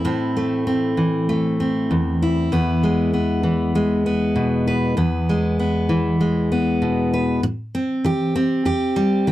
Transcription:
0.00 0.97 E3 medium
0.00 2.22 E4 soft
0.05 1.90 A2 medium
0.05 0.66 C4 medium
0.37 1.28 A3 soft
0.67 1.59 C4 soft
0.97 3.43 E3 soft
1.29 2.48 A3 medium
1.60 2.48 C4 soft
1.91 2.51 E2 medium
2.22 4.67 E4 soft
2.52 4.96 E2 medium
2.52 3.13 B3 medium
2.83 3.75 G#3 soft
3.14 4.05 B3 soft
3.43 5.89 E3 medium
3.75 4.94 G#3 medium
4.06 4.96 B3 medium
4.36 4.94 B2 medium
4.67 4.94 B4 medium
4.97 7.43 E2 medium
4.97 5.58 B3 medium
5.29 6.19 G#3 medium
5.59 6.50 B3 soft
5.89 7.39 E3 soft
6.21 7.40 G#3 medium
6.52 7.44 B3 medium
6.82 7.40 B2 soft
7.13 7.40 B4 medium
7.43 7.99 A2 medium
7.75 8.35 C4 medium
8.04 8.60 E3 medium
8.04 8.65 G4 medium
8.36 9.27 C4 medium
8.65 9.21 E2 medium
8.65 9.32 G4 medium
8.96 9.32 G3 medium
9.27 9.32 E3 medium
9.27 9.32 C4 medium

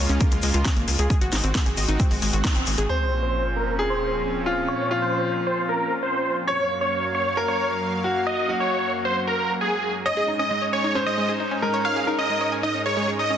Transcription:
0.00 1.08 C#3 medium
0.00 2.85 G#3 medium
0.00 1.08 A#3 medium
0.00 1.08 F4 medium
0.09 0.18 C#2 medium
0.09 0.17 C#4 loud
0.09 closed hi-hat medium
0.09 shaker soft
0.20 0.28 A#3 medium
0.20 kick loud
0.20 closed hi-hat medium
0.20 shaker medium
0.32 0.41 C#2 medium
0.32 0.39 G#3 medium
0.32 closed hi-hat medium
0.32 shaker soft
0.42 0.52 C#2 loud
0.42 0.47 G#3 loud
0.42 open hi-hat loud
0.42 shaker medium
0.54 0.63 C#2 loud
0.54 0.59 F4 medium
0.54 closed hi-hat medium
0.54 shaker soft
0.65 0.73 C#4 medium
0.65 kick loud
0.65 snare loud
0.65 closed hi-hat medium
0.65 shaker soft
0.77 0.86 G#1 medium
0.77 0.84 A#3 medium
0.77 closed hi-hat medium
0.77 shaker soft
0.88 0.97 C#2 loud
0.88 0.92 G#3 medium
0.88 open hi-hat loud
0.88 shaker medium
0.99 1.08 C#2 medium
0.99 1.06 G#4 loud
0.99 closed hi-hat medium
0.99 shaker soft
1.10 2.88 C4 medium
1.10 2.88 F#4 medium
1.10 1.17 G#4 loud
1.10 kick loud
1.10 closed hi-hat medium
1.10 shaker soft
1.21 1.30 G#1 medium
1.21 1.26 F#4 loud
1.21 closed hi-hat medium
1.21 shaker soft
1.32 1.41 G#1 loud
1.32 1.43 D#4 medium
1.32 snare medium
1.32 open hi-hat loud
1.32 shaker medium
1.44 1.53 G#1 medium
1.44 1.48 C4 medium
1.44 closed hi-hat medium
1.44 shaker soft
1.55 1.62 G#3 medium
1.55 kick loud
1.55 snare loud
1.55 closed hi-hat medium
1.55 shaker soft
1.66 1.75 G#1 medium
1.66 1.73 G#4 medium
1.66 closed hi-hat medium
1.66 shaker soft
1.77 1.86 G#1 loud
1.77 1.82 D#5 medium
1.77 open hi-hat loud
1.77 shaker medium
1.88 1.97 G#1 medium
1.88 1.96 D#4 loud
1.88 closed hi-hat medium
1.88 shaker soft
2.00 2.07 C4 medium
2.00 kick loud
2.00 closed hi-hat medium
2.00 shaker medium
2.11 2.20 G#1 medium
2.11 2.18 G#3 medium
2.11 open hi-hat medium
2.11 shaker soft
2.22 2.31 G#1 loud
2.22 2.26 G#3 loud
2.22 open hi-hat loud
2.22 shaker medium
2.33 2.42 G#1 medium
2.33 2.38 F#4 medium
2.33 closed hi-hat medium
2.33 shaker soft
2.44 2.52 D#4 medium
2.44 kick loud
2.44 snare loud
2.44 closed hi-hat medium
2.44 shaker soft
2.56 2.65 G#1 medium
2.56 2.63 C4 medium
2.56 closed hi-hat medium
2.56 shaker soft
2.66 2.76 G#1 loud
2.66 2.71 G#3 medium
2.66 open hi-hat loud
2.66 shaker medium
2.77 2.87 G#1 medium
2.77 2.85 G#4 loud
2.77 closed hi-hat medium
2.77 shaker soft
2.89 6.44 A#2 medium
2.89 6.44 F3 medium
2.89 6.44 C4 medium
2.89 6.44 C#4 medium
2.89 3.13 C5 loud
2.89 3.70 C5 medium
2.89 sub drop medium
3.23 3.47 C5 medium
3.56 3.80 A#4 medium
3.79 4.37 G#4 medium
3.90 4.14 C5 medium
4.46 4.89 F4 medium
4.68 4.92 C#5 medium
4.91 6.39 F4 medium
5.02 5.34 C5 loud
5.47 5.63 C5 medium
5.69 5.93 A#4 medium
6.03 6.35 C5 medium
6.47 10.02 F#2 medium
6.47 10.02 F#3 medium
6.47 10.02 A#3 medium
6.47 6.71 C#5 loud
6.47 7.28 C#5 medium
6.47 10.02 F5 medium
6.81 7.05 C#5 medium
7.15 7.39 C#5 medium
7.37 7.95 A#4 medium
7.48 7.72 C#5 medium
8.04 8.47 F#4 medium
8.27 8.51 D#5 loud
8.49 9.97 F#4 medium
8.60 8.92 C#5 medium
9.05 9.21 C5 medium
9.27 9.51 A#4 medium
9.61 9.93 G#4 medium
10.06 13.38 G#2 medium
10.06 13.38 G#3 medium
10.06 13.38 C#4 medium
10.06 13.38 D#4 medium
10.06 10.13 C#5 loud
10.06 10.30 D#5 loud
10.06 10.86 D#5 medium
10.17 10.21 G#4 loud
10.28 10.39 D#4 medium
10.39 10.44 C#4 medium
10.39 10.63 D#5 medium
10.51 10.58 G#3 medium
10.62 10.69 C#5 medium
10.73 10.97 C#5 medium
10.73 10.77 G#5 medium
10.84 10.91 D#4 medium
10.95 11.02 C#4 medium
10.95 11.53 C5 medium
11.06 11.14 G#3 medium
11.06 11.30 D#5 medium
11.18 11.22 G#3 medium
11.29 11.33 G#4 medium
11.40 11.47 D#4 medium
11.51 11.58 C#4 medium
11.62 11.67 G#3 medium
11.62 12.05 A#4 medium
11.74 11.81 C#5 loud
11.85 11.92 C#5 medium
11.85 12.09 F5 loud
11.96 12.00 G#4 loud
12.07 12.18 D#4 medium
12.07 13.38 A#4 medium
12.18 12.23 C#4 medium
12.18 12.50 D#5 medium
12.30 12.37 G#3 medium
12.41 12.48 C#5 medium
12.52 12.56 G#5 medium
12.63 12.70 D#4 medium
12.63 12.79 D#5 medium
12.74 12.82 C#4 medium
12.86 12.93 G#3 medium
12.86 13.10 C#5 medium
12.97 13.01 G#3 loud
13.08 13.12 G#4 medium
13.19 13.26 D#4 medium
13.19 13.38 D#5 loud
13.30 13.38 C#4 medium

